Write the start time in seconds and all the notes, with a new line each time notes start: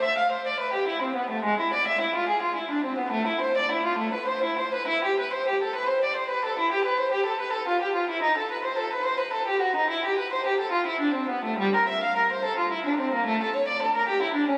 0.04 E5
0.18 F5
0.32 C5
0.47 D5
0.60 B4
0.73 G4
0.88 E4
1.02 C4
1.15 B3
1.30 A3
1.44 G#3
1.60 E4
1.74 D5
1.88 E5
2.01 E4
2.16 F4
2.29 G#4
2.42 F4
2.55 E4
2.71 D4
2.84 C4
2.98 B3
3.12 A3
3.27 E4
3.41 C5
3.57 D5
3.72 E4
3.85 F4
3.98 A3
4.13 B4
4.28 C5
4.44 E4
4.59 C5
4.74 B4
4.88 E4
5.05 G4
5.20 B4
5.33 C5
5.48 G4
5.63 A4
5.76 B4
5.89 C5
6.04 D5
6.16 C5
6.30 B4
6.45 A4
6.59 E4
6.72 G4
6.85 B4
6.99 C5
7.12 G4
7.26 A4
7.40 B4
7.53 A4
7.68 F4
7.82 G4
7.95 F4
8.10 E4
8.22 D#4
8.38 A4
8.51 B4
8.65 C5
8.79 A4
8.93 B4
9.05 C5
9.20 B4
9.33 A4
9.48 G4
9.61 F#4
9.76 D#4
9.90 E4
10.05 G4
10.19 B4
10.33 C5
10.47 G4
10.60 A4
10.72 F4
10.87 E4
11.00 D4
11.14 C4
11.29 B3
11.45 A3
11.59 G3
11.76 A#4
11.89 E5
12.03 F5
12.17 A#4
12.32 C5
12.45 A4
12.58 F4
12.72 E4
12.86 D4
13.00 C4
13.14 A#3
13.26 A3
13.43 A4
13.56 C#5
13.68 D5
13.83 A4
13.96 A#4
14.09 G4
14.22 E4
14.34 D4
14.48 C#4